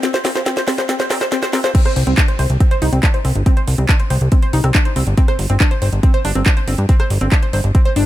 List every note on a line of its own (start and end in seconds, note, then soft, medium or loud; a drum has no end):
0.03 0.08 C4 loud
0.03 snare loud
0.03 closed hi-hat loud
0.14 0.19 C5 loud
0.14 snare medium
0.14 closed hi-hat medium
0.25 0.32 A#1 medium
0.25 0.29 C4 loud
0.25 snare loud
0.25 open hi-hat loud
0.35 0.43 A#1 medium
0.35 0.40 C5 loud
0.35 snare medium
0.35 closed hi-hat medium
0.46 0.51 C4 loud
0.46 snare loud
0.46 closed hi-hat loud
0.57 0.62 C5 loud
0.57 snare medium
0.57 closed hi-hat medium
0.68 0.75 A#1 medium
0.68 0.72 C4 loud
0.68 snare loud
0.68 open hi-hat loud
0.78 0.86 A#1 medium
0.78 0.83 C5 loud
0.78 snare medium
0.78 closed hi-hat medium
0.89 0.94 C4 loud
0.89 snare loud
0.89 closed hi-hat loud
1.00 1.04 C5 loud
1.00 snare medium
1.00 closed hi-hat medium
1.10 1.18 A#2 loud
1.10 1.15 C4 loud
1.10 snare loud
1.10 open hi-hat loud
1.21 1.29 G#1 medium
1.21 1.26 C5 loud
1.21 snare loud
1.21 closed hi-hat medium
1.32 1.37 C4 loud
1.32 snare loud
1.32 closed hi-hat loud
1.43 1.47 C5 loud
1.43 snare loud
1.43 closed hi-hat medium
1.53 1.61 A#2 loud
1.53 1.58 C4 loud
1.53 snare loud
1.53 open hi-hat loud
1.64 1.72 F2 medium
1.64 1.69 C5 loud
1.64 snare loud
1.64 closed hi-hat medium
1.75 1.79 C4 loud
1.75 kick loud
1.75 closed hi-hat loud
1.75 crash loud
1.85 1.90 C5 loud
1.85 cross-stick medium
1.85 closed hi-hat medium
1.96 2.04 C2 medium
1.96 open hi-hat loud
2.07 2.15 C2 medium
2.07 2.12 C4 medium
2.07 closed hi-hat medium
2.18 2.20 D4 loud
2.18 kick loud
2.18 clap loud
2.18 closed hi-hat loud
2.28 2.31 C5 medium
2.28 closed hi-hat medium
2.39 2.47 C2 loud
2.39 2.44 C5 medium
2.39 open hi-hat loud
2.50 2.57 C2 medium
2.50 closed hi-hat medium
2.60 2.67 C4 medium
2.60 kick loud
2.60 closed hi-hat medium
2.71 2.76 C5 loud
2.71 closed hi-hat medium
2.82 2.90 C2 loud
2.82 2.87 D#4 loud
2.82 open hi-hat loud
2.93 3.00 C2 medium
2.93 2.97 C4 medium
2.93 closed hi-hat medium
3.03 3.06 D4 loud
3.03 kick loud
3.03 clap loud
3.03 closed hi-hat medium
3.14 3.19 C5 medium
3.14 closed hi-hat medium
3.25 3.32 C2 medium
3.25 3.29 C4 medium
3.25 open hi-hat loud
3.35 3.43 G1 medium
3.35 closed hi-hat medium
3.46 3.51 C4 loud
3.46 kick loud
3.46 closed hi-hat medium
3.57 3.62 C5 loud
3.57 closed hi-hat medium
3.68 3.75 C2 medium
3.68 open hi-hat loud
3.78 3.86 C2 medium
3.78 3.83 C4 medium
3.78 closed hi-hat medium
3.89 3.92 D4 loud
3.89 kick loud
3.89 clap loud
3.89 closed hi-hat medium
4.00 4.03 C5 medium
4.00 closed hi-hat medium
4.10 4.18 C2 loud
4.10 4.15 C5 medium
4.10 open hi-hat loud
4.21 4.29 C2 medium
4.21 closed hi-hat medium
4.32 4.39 C4 medium
4.32 kick loud
4.32 closed hi-hat medium
4.42 4.47 C5 loud
4.42 closed hi-hat medium
4.53 4.61 C2 loud
4.53 4.58 D#4 loud
4.53 open hi-hat loud
4.64 4.72 C2 medium
4.64 4.69 C4 medium
4.64 cross-stick medium
4.64 closed hi-hat medium
4.75 4.78 D4 loud
4.75 kick loud
4.75 clap loud
4.75 closed hi-hat medium
4.85 4.90 C5 medium
4.85 closed hi-hat medium
4.96 5.04 C2 medium
4.96 5.01 C4 medium
4.96 open hi-hat loud
5.07 5.15 G1 medium
5.07 closed hi-hat medium
5.17 5.22 C4 loud
5.17 kick loud
5.17 closed hi-hat medium
5.28 5.33 C5 loud
5.28 cross-stick medium
5.28 closed hi-hat medium
5.39 5.47 G1 medium
5.39 open hi-hat loud
5.50 5.57 G1 medium
5.50 5.54 C4 medium
5.50 closed hi-hat soft
5.60 5.63 D4 loud
5.60 kick loud
5.60 clap loud
5.60 closed hi-hat medium
5.71 5.74 C5 medium
5.71 closed hi-hat medium
5.82 5.90 G1 loud
5.82 5.87 C5 medium
5.82 open hi-hat loud
5.92 6.00 G1 medium
5.92 closed hi-hat medium
6.03 6.10 C4 medium
6.03 kick loud
6.03 closed hi-hat medium
6.14 6.19 C5 loud
6.14 closed hi-hat soft
6.25 6.32 G1 loud
6.25 6.29 D4 loud
6.25 open hi-hat loud
6.35 6.43 G1 medium
6.35 6.40 C4 medium
6.35 closed hi-hat medium
6.46 6.49 D4 loud
6.46 kick loud
6.46 clap loud
6.46 closed hi-hat medium
6.57 6.62 C5 medium
6.57 closed hi-hat medium
6.68 6.75 G1 medium
6.68 6.72 C4 medium
6.68 open hi-hat loud
6.78 6.86 G2 medium
6.78 closed hi-hat soft
6.89 6.94 C4 loud
6.89 kick loud
6.89 closed hi-hat medium
7.00 7.04 C5 loud
7.00 cross-stick medium
7.00 closed hi-hat medium
7.10 7.18 G1 medium
7.10 open hi-hat loud
7.21 7.29 G1 medium
7.21 7.26 C4 medium
7.21 closed hi-hat soft
7.32 7.35 D4 loud
7.32 kick loud
7.32 clap loud
7.32 closed hi-hat medium
7.43 7.45 C5 medium
7.43 closed hi-hat soft
7.53 7.61 G1 loud
7.53 7.58 C5 medium
7.53 open hi-hat loud
7.64 7.72 G1 medium
7.64 closed hi-hat soft
7.75 7.82 C4 medium
7.75 kick loud
7.75 closed hi-hat medium
7.85 7.90 C5 loud
7.85 closed hi-hat soft
7.96 8.04 G1 loud
7.96 8.01 D4 loud
7.96 open hi-hat loud